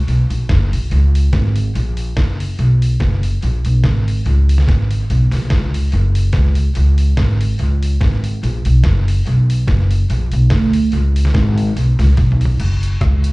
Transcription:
0.07 upright bass B1, open hi-hat
0.30 upright bass A#1, open hi-hat
0.49 upright bass F#1, kick, snare, open hi-hat
0.72 upright bass A#1, open hi-hat
0.91 upright bass C#2, open hi-hat
1.15 open hi-hat
1.33 upright bass G#1, kick, snare, open hi-hat
1.56 open hi-hat
1.75 upright bass A#1, open hi-hat
1.97 open hi-hat
2.17 upright bass F#1, kick, snare, open hi-hat
2.40 open hi-hat
2.59 upright bass B1, open hi-hat
2.82 open hi-hat
3.00 upright bass F#1, kick, snare, open hi-hat
3.23 open hi-hat
3.42 upright bass A#1, open hi-hat
3.65 upright bass B1, open hi-hat
3.84 upright bass G#1, kick, snare, open hi-hat
4.08 open hi-hat
4.26 upright bass C#2, open hi-hat
4.49 open hi-hat
4.58 snare
4.68 upright bass G#1, kick, snare, open hi-hat
4.91 open hi-hat
5.10 upright bass B1, open hi-hat
5.32 upright bass A#1, snare, open hi-hat
5.50 upright bass C#2, kick, snare, open hi-hat
5.74 open hi-hat
5.92 upright bass F#1, open hi-hat
6.15 open hi-hat
6.33 upright bass C#2, kick, snare, open hi-hat
6.55 open hi-hat
6.75 upright bass C#2, open hi-hat
6.98 open hi-hat
7.17 upright bass G#1, kick, snare, open hi-hat
7.41 open hi-hat
7.59 upright bass C#2, open hi-hat
7.83 open hi-hat
8.01 upright bass G#1, kick, snare, open hi-hat
8.24 open hi-hat
8.43 upright bass A#1, open hi-hat
8.65 upright bass B1, open hi-hat
8.84 upright bass F#1, kick, snare, open hi-hat
9.08 open hi-hat
9.27 upright bass B1, open hi-hat
9.50 open hi-hat
9.68 upright bass F#1, kick, snare, open hi-hat
9.91 open hi-hat
10.10 upright bass A#1, open hi-hat
10.32 upright bass B1, open hi-hat
10.50 upright bass D2, kick, snare, open hi-hat
10.73 open hi-hat
10.92 upright bass C#2, open hi-hat
11.16 open hi-hat
11.25 snare
11.34 upright bass G#1, kick, snare, open hi-hat
11.58 open hi-hat
11.76 upright bass B1, open hi-hat
11.99 upright bass C#2, snare, open hi-hat
12.17 upright bass B1, kick, snare, open hi-hat
12.32 mid tom
12.41 open hi-hat
12.45 floor tom
12.60 upright bass F#1, closed hi-hat, crash
12.83 closed hi-hat
13.01 upright bass C#2, kick, cross-stick, closed hi-hat
13.24 closed hi-hat

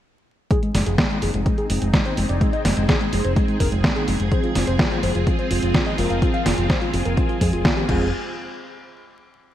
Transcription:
0.51 string machine C4 D#4 G#4, soft synth lead G#4, kick, closed hi-hat
0.63 soft synth lead G#3, closed hi-hat
0.74 fingered electric bass F1, soft synth lead G#3, snare, open hi-hat
0.86 fingered electric bass F1, soft synth lead G#4, closed hi-hat
0.98 soft synth lead G#3, kick, snare, closed hi-hat
1.10 soft synth lead G#3, closed hi-hat
1.22 fingered electric bass F1, soft synth lead G#4, open hi-hat
1.34 fingered electric bass F1, soft synth lead G#3, closed hi-hat
1.46 soft synth lead G#3, kick, closed hi-hat
1.58 soft synth lead G#4, closed hi-hat
1.70 fingered electric bass F1, soft synth lead G#3, open hi-hat
1.82 fingered electric bass F1, soft synth lead G#3, closed hi-hat
1.93 soft synth lead G#3, kick, snare, closed hi-hat
2.05 soft synth lead C5, closed hi-hat
2.17 fingered electric bass F1, soft synth lead G#3, open hi-hat
2.29 fingered electric bass F1, soft synth lead D5, closed hi-hat
2.41 soft synth lead G#3, kick, closed hi-hat
2.53 soft synth lead D#5, closed hi-hat
2.65 fingered electric bass F1, soft synth lead G#3, snare, open hi-hat
2.77 fingered electric bass F1, soft synth lead G#3, closed hi-hat
2.89 soft synth lead G#4, kick, snare, closed hi-hat
3.01 soft synth lead G#3, closed hi-hat
3.12 fingered electric bass F1, soft synth lead G#3, open hi-hat
3.24 fingered electric bass F1, soft synth lead C5, closed hi-hat
3.36 soft synth lead G#3, kick, closed hi-hat
3.48 soft synth lead G#3, closed hi-hat
3.60 fingered electric bass F1, soft synth lead A#4, kick, open hi-hat
3.72 fingered electric bass F1, soft synth lead G#3, closed hi-hat
3.84 soft synth lead G#3, kick, snare, closed hi-hat
3.96 soft synth lead G#4, closed hi-hat
4.08 fingered electric bass F1, soft synth lead G#3, open hi-hat
4.20 fingered electric bass F1, soft synth lead G#3, closed hi-hat
4.32 analog polysynth F3 G#3 C4 G#4, string machine C4 F4, soft synth lead C5, kick, closed hi-hat
4.44 soft synth lead F4, closed hi-hat
4.55 fingered electric bass F1, soft synth lead F4, snare, open hi-hat
4.67 fingered electric bass F1, soft synth lead C5, closed hi-hat
4.79 soft synth lead F4, kick, snare, closed hi-hat
4.91 soft synth lead F4, closed hi-hat
5.03 fingered electric bass F1, soft synth lead C5, open hi-hat
5.15 fingered electric bass F1, soft synth lead F4, closed hi-hat
5.27 soft synth lead F4, kick, closed hi-hat
5.39 soft synth lead C5, closed hi-hat
5.51 fingered electric bass F1, soft synth lead F4, open hi-hat
5.63 fingered electric bass F1, soft synth lead F4, closed hi-hat
5.74 soft synth lead F4, kick, snare, closed hi-hat
5.86 soft synth lead D#5, closed hi-hat
5.98 fingered electric bass F1, analog polysynth F3 G#3 C4 A#4, soft synth lead F4, open hi-hat
6.10 fingered electric bass F1, soft synth lead F5, closed hi-hat
6.22 analog polysynth F3 G#3 C4 G#4, soft synth lead F4, kick, closed hi-hat
6.34 soft synth lead F5, closed hi-hat
6.46 fingered electric bass F1, soft synth lead F4, snare, open hi-hat
6.58 fingered electric bass F1, soft synth lead F4, closed hi-hat
6.70 soft synth lead C5, kick, snare, closed hi-hat
6.82 soft synth lead F4, closed hi-hat
6.93 fingered electric bass F1, soft synth lead F4, open hi-hat
7.05 fingered electric bass F1, soft synth lead A#4, closed hi-hat
7.17 soft synth lead F4, kick, closed hi-hat
7.29 soft synth lead F4, closed hi-hat
7.41 fingered electric bass F2, soft synth lead G#4, kick, open hi-hat
7.53 fingered electric bass F1, soft synth lead F4, closed hi-hat
7.65 soft synth lead F4, kick, snare, closed hi-hat
7.77 soft synth lead G4, closed hi-hat
7.89 fingered electric bass F1, analog polysynth F3 G#3 C4 G#4, string machine C4 F4 G#4, soft synth lead G#4, kick, crash

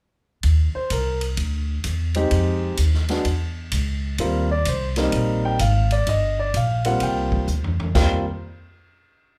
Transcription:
0.43 upright bass D#2, kick, ride
0.75 grand piano C5, muted upright bass stroke
0.90 upright bass C2, grand piano A#4, kick, hi-hat pedal, ride
1.21 ride
1.37 upright bass D2, kick, ride
1.84 upright bass E2, kick, hi-hat pedal, ride
2.14 grand piano G#3 C4 D#4 G4, ride
2.31 upright bass F2, kick, ride
2.77 upright bass D#2, kick, hi-hat pedal, ride
2.94 snare
3.09 grand piano G#3 B3 D4 F#4, snare, ride
3.25 upright bass E2, kick, ride
3.72 upright bass C#2, kick, hi-hat pedal, ride
4.18 upright bass D#2, grand piano G3 A#3 C4 F4, kick, ride
4.51 grand piano D5
4.65 upright bass C2, grand piano C5, kick, hi-hat pedal, ride
4.96 grand piano G3 A#3 C4 D#4, snare, ride
5.12 upright bass A#1, kick, ride
5.45 grand piano G5
5.59 upright bass G#1, grand piano F5, kick, hi-hat pedal, ride
5.91 grand piano D5, ride
6.07 upright bass G1, grand piano D#5, kick, ride
6.39 grand piano D5
6.54 upright bass A#1, grand piano F5, kick, hi-hat pedal, ride
6.85 grand piano G3 A#3 C4 F4 F#5, ride
7.00 upright bass C2, grand piano G5, kick, ride
7.32 kick
7.47 upright bass D2, hi-hat pedal
7.64 floor tom
7.80 floor tom
7.94 upright bass D#2, grand piano G3 A#3 C4 F4 G5, kick, snare, crash

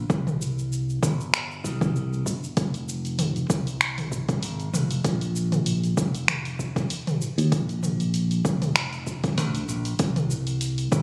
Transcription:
0.10 fingered electric bass C2, kick, shaker
0.27 mid tom, shaker
0.42 shaker
0.59 shaker
0.73 shaker
0.90 shaker
1.02 fingered electric bass G1, kick, mid tom, shaker
1.20 shaker
1.34 finger snap, shaker
1.51 shaker
1.64 fingered electric bass C2, kick, shaker
1.81 kick, mid tom, shaker
1.96 shaker
2.13 shaker
2.26 fingered electric bass G1, kick, shaker
2.44 shaker
2.57 fingered electric bass F1, kick, open hi-hat, shaker
2.74 open hi-hat, shaker
2.89 shaker
3.05 open hi-hat, shaker
3.19 mid tom, open hi-hat, shaker
3.36 open hi-hat, shaker
3.50 fingered electric bass C2, kick, shaker
3.67 open hi-hat, shaker
3.81 finger snap, open hi-hat, shaker
3.98 mid tom, open hi-hat, shaker
4.12 kick, shaker
4.28 kick, open hi-hat, shaker
4.43 fingered electric bass G#1, open hi-hat, shaker
4.60 open hi-hat, shaker
4.73 fingered electric bass F1, mid tom, shaker
4.91 open hi-hat, shaker
5.04 fingered electric bass A#1, kick, open hi-hat, shaker
5.21 open hi-hat, shaker
5.36 shaker
5.52 mid tom, open hi-hat, shaker
5.66 open hi-hat, shaker
5.84 open hi-hat, shaker
5.97 fingered electric bass F1, kick, shaker
6.15 open hi-hat, shaker
6.28 finger snap, mid tom, open hi-hat, shaker
6.45 open hi-hat, shaker
6.59 kick, shaker
6.76 kick, open hi-hat, shaker
6.90 open hi-hat, shaker
7.07 mid tom, open hi-hat, shaker
7.22 shaker
7.38 fingered electric bass D#2, open hi-hat, shaker
7.52 fingered electric bass A#1, kick, open hi-hat, shaker
7.69 open hi-hat, shaker
7.83 mid tom, shaker
8.00 open hi-hat, shaker
8.14 open hi-hat, shaker
8.31 open hi-hat, shaker
8.45 fingered electric bass F1, kick, shaker
8.62 mid tom, open hi-hat, shaker
8.76 finger snap, open hi-hat, shaker
8.93 open hi-hat, shaker
9.07 kick, shaker
9.24 kick, open hi-hat, shaker
9.37 fingered electric bass D2, mid tom, open hi-hat, shaker
9.55 open hi-hat, shaker
9.68 fingered electric bass A#1, shaker
9.85 open hi-hat, shaker
9.99 fingered electric bass C2, kick, open hi-hat, shaker
10.16 mid tom, open hi-hat, shaker
10.31 shaker
10.47 open hi-hat, shaker
10.61 open hi-hat, shaker
10.78 open hi-hat, shaker
10.92 fingered electric bass G1, kick, mid tom, shaker

